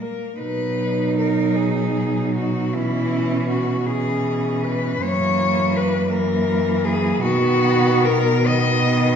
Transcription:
Already playing: A#2 G3
0.00 A#3 A#4
0.39 B2 F#3 D#4 B4
1.18 A#4
1.56 G#4
2.35 F#4
2.73 E3 C#4 E4
3.49 F#4
3.86 E3 C#4 G#4
4.64 B4
5.00 F#2 E3 A#3 C#5
5.76 B4
6.10 E3 A#3 A#4
6.85 G#4
7.20 B2 D#3 B3 F#4
8.06 A#4
8.44 D#3 B3 D#5

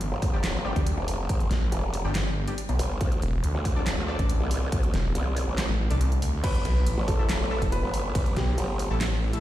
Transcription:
0.01 G1, closed hi-hat
0.12 G1
0.22 kick, open hi-hat
0.33 G3 D4 G4
0.44 snare, clap, closed hi-hat
0.55 G1
0.65 G3 D4 G4
0.76 D2, kick, closed hi-hat
0.87 closed hi-hat
0.98 F1
1.08 open hi-hat
1.29 G1, kick, closed hi-hat
1.40 closed hi-hat
1.51 A1, snare, closed hi-hat
1.72 F1, closed hi-hat
1.94 open hi-hat
2.05 G1 G3 D4 G4
2.15 snare, clap, closed hi-hat
2.47 G3 D4 G4, closed hi-hat
2.58 closed hi-hat
2.69 B1, closed hi-hat
2.79 G1, open hi-hat
3.01 D2, kick, closed hi-hat
3.12 closed hi-hat
3.22 E1, closed hi-hat
3.44 D2, closed hi-hat
3.55 D2
3.65 kick, open hi-hat
3.76 D4 A4 D5
3.87 snare, clap, closed hi-hat
3.98 D2
4.08 D4 A4 D5
4.19 A1, kick, closed hi-hat
4.29 closed hi-hat
4.40 C2
4.51 open hi-hat
4.72 D2, kick, closed hi-hat
4.83 closed hi-hat
4.94 E1, snare, closed hi-hat
5.15 C2, closed hi-hat
5.37 open hi-hat
5.47 A1
5.58 snare, clap, closed hi-hat
5.69 A1
5.90 C2 D4 A4 D5, closed hi-hat
6.01 closed hi-hat
6.12 closed hi-hat
6.22 D2, open hi-hat
6.44 A1 B4, kick, closed hi-hat, crash, ride
6.55 closed hi-hat
6.65 B1, closed hi-hat
6.86 A1, closed hi-hat, ride
6.98 A1
7.08 A4, kick, open hi-hat
7.19 A3 E4 A4
7.29 snare, clap, closed hi-hat, ride
7.40 A1
7.51 A3 E4 A4
7.62 E1, kick, closed hi-hat
7.72 B4, closed hi-hat, ride
7.83 G1
7.94 open hi-hat
8.15 A1, kick, closed hi-hat, ride
8.26 closed hi-hat
8.36 B1 G4, snare, closed hi-hat
8.58 G1, closed hi-hat, ride
8.79 open hi-hat
8.90 A1 A3 E4 A4
9.01 snare, clap, closed hi-hat, ride
9.33 A3 E4 A4, closed hi-hat

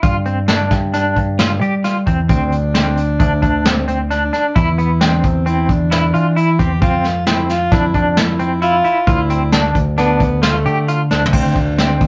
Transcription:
0.03 G2 F4, kick, closed hi-hat
0.25 C4, closed hi-hat
0.48 D4, snare, closed hi-hat
0.71 G2, kick, snare, closed hi-hat
0.93 D4, snare, closed hi-hat
1.16 G2, kick, closed hi-hat
1.39 F4, snare, closed hi-hat
1.61 G3 G4, closed hi-hat
1.84 F4, snare, closed hi-hat
2.07 E2 C4, kick, closed hi-hat
2.29 D2 C4 D4, kick, closed hi-hat
2.52 closed hi-hat
2.74 C4, snare, closed hi-hat
2.97 closed hi-hat
3.20 D2 D4, kick, closed hi-hat
3.42 D2 D4, kick, closed hi-hat
3.65 C4, snare, closed hi-hat
3.88 C4, closed hi-hat
4.11 D4, snare, closed hi-hat
4.33 D4, snare, closed hi-hat
4.56 E2 E4, kick, closed hi-hat
4.78 B3, closed hi-hat
5.01 C4 D4, snare, closed hi-hat
5.24 E2 C4, kick, closed hi-hat
5.46 C4 E4, closed hi-hat
5.69 E2 D4, kick, closed hi-hat
5.91 E4, snare, closed hi-hat
6.14 E3 F4, closed hi-hat
6.36 E4, closed hi-hat
6.59 E2 C4 G4, kick, closed hi-hat
6.82 F2 C4 F4, kick, closed hi-hat
7.04 snare, closed hi-hat
7.27 C4 E4, snare, closed hi-hat
7.49 F4, snare, closed hi-hat
7.72 F2 D4 E4, kick, snare, closed hi-hat
7.94 F2 D4, kick, closed hi-hat
8.17 E4, snare, closed hi-hat
8.39 C4, closed hi-hat
8.62 E4 F4, closed hi-hat
8.84 E4, closed hi-hat
9.07 D2 E4 F4, kick, closed hi-hat
9.30 C4, closed hi-hat
9.52 D4, snare, closed hi-hat
9.75 D2, kick, closed hi-hat
9.98 B3 D4, snare, closed hi-hat
10.20 D2, kick, closed hi-hat
10.43 A3 F4, snare, closed hi-hat
10.65 D3 G4, closed hi-hat
10.88 F4, closed hi-hat
11.11 D2 D4, snare
11.26 floor tom
11.33 D2 C4 D4, kick, crash
11.56 D2, kick, closed hi-hat
11.78 C4, snare, closed hi-hat
12.01 D2, kick, closed hi-hat

